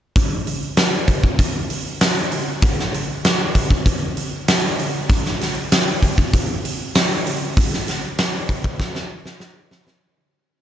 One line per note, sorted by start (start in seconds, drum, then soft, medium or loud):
0.16 kick loud
0.16 open hi-hat medium
0.47 open hi-hat soft
0.77 snare loud
0.77 open hi-hat medium
1.08 kick medium
1.08 open hi-hat soft
1.24 kick medium
1.39 kick medium
1.39 open hi-hat medium
1.70 open hi-hat medium
2.01 snare loud
2.01 open hi-hat medium
2.32 open hi-hat medium
2.62 kick loud
2.62 open hi-hat medium
2.79 snare soft
2.94 open hi-hat medium
3.24 snare loud
3.24 open hi-hat medium
3.55 kick medium
3.55 open hi-hat soft
3.70 kick medium
3.86 kick medium
3.86 open hi-hat medium
4.17 open hi-hat soft
4.48 snare loud
4.48 open hi-hat medium
4.79 open hi-hat soft
5.09 kick loud
5.09 open hi-hat medium
5.26 snare soft
5.41 snare soft
5.41 open hi-hat medium
5.72 snare loud
5.72 open hi-hat medium
6.03 kick medium
6.03 open hi-hat medium
6.18 kick medium
6.33 kick medium
6.33 open hi-hat medium
6.65 open hi-hat medium
6.95 snare loud
6.95 open hi-hat medium
7.27 open hi-hat medium
7.57 kick loud
7.57 open hi-hat medium
7.73 snare soft
7.88 snare soft
7.88 open hi-hat medium
8.18 snare loud
8.18 open hi-hat medium
8.49 kick medium
8.49 open hi-hat soft
8.64 kick medium
8.80 kick medium
8.80 snare medium
8.95 snare medium
9.26 snare medium
9.40 snare medium
9.71 snare medium
9.87 snare medium